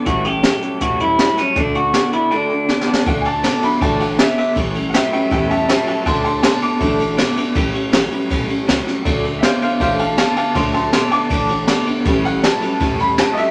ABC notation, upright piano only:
X:1
M:4/4
L:1/8
Q:1/4=160
K:D
V:1 name="Upright piano"
[cea] [cea] [cea] [cea] [cea] [cea] [cea] [cea] | [dfa] [dfa] [fa] [dfb] [dfa] [dfa] [dfa] [dfa] | f [^ga]2 b a f e e | z2 [efg] [eg] [eg] [ea] [ea] [ea] |
[a=c'] [ac'] [ac'] [ad']4 z | z8 | z2 [=ce=f] [cf] [cf] [fa] [fa] [fa] | [a=c'] [ac'] [ac'] [ad']4 z |
z f a3 b a [_e=e] |]
V:2 name="Upright piano"
z8 | z8 | z3 [F,A,D]4- [F,A,D] | z3 [G,B,C]4- [G,B,C] |
[F,A,D] z3 [F,A,D] z3 | z3 [G,B,C] z4 | [F,A,D]4 [F,A,D] z3 | z [F,A,D]3 z4 |
[G,B,C]3 [G,B,C] z4 |]